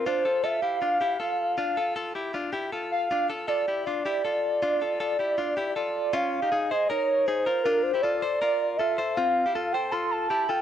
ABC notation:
X:1
M:4/4
L:1/16
Q:1/4=158
K:Dm
V:1 name="Soft synth lead"
c4 e2 f8- f2 | f4 z8 z2 f2- | f2 z2 d4 d8- | d12 d4 |
f6 _e2 _d4 c4 | B2 c2 d8 e4 | f6 g2 c'2 a4 g2 |]
V:2 name="Clean electric guitar"
[DF]2 [FA]2 [FA]2 [EG]2 [DF]2 [EG]2 [FA]4 | [DF]2 [FA]2 [FA]2 [EG]2 [DF]2 [EG]2 [FA]4 | [DF]2 [FA]2 [FA]2 [EG]2 [DF]2 [EG]2 [FA]4 | [DF]2 [FA]2 [FA]2 [EG]2 [DF]2 [EG]2 [FA]4 |
[_DF]3 [_EG] [E_A]2 [Ac]2 [EB]4 [EA]2 [FB]2 | [DF]3 [EG] [FA]2 [Ac]2 [FB]4 [FA]2 [Ac]2 | [CF]3 [EG] [FA]2 [Ac]2 [FA]4 [EG]2 [FA]2 |]